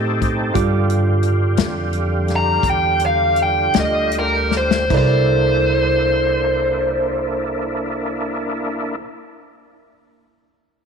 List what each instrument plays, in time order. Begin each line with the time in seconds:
Already playing: upright bass A2, tonewheel organ C4 D#4 G4 A4, tine electric piano G4 A4 C5 D#5
0.22 kick, closed hi-hat
0.53 upright bass G2, tonewheel organ D3 G3 F4 G4, tine electric piano F4 G4 D6, kick, closed hi-hat
0.90 closed hi-hat
1.23 closed hi-hat
1.57 upright bass F2, snare, closed hi-hat
1.93 closed hi-hat
2.28 snare, closed hi-hat
2.36 lead electric guitar A#5
2.63 upright bass E2, kick, closed hi-hat
2.70 lead electric guitar G5
2.99 closed hi-hat
3.06 lead electric guitar F5
3.36 closed hi-hat
3.43 lead electric guitar G5
3.74 upright bass D2, snare, closed hi-hat
3.80 lead electric guitar D#5
4.11 closed hi-hat
4.19 lead electric guitar A#4
4.51 snare
4.57 lead electric guitar C5
4.71 snare
4.89 upright bass C2, tonewheel organ A#3 D4 E4, tine electric piano E4 A4 A#4, kick, china
4.94 lead electric guitar C5, tine electric piano D5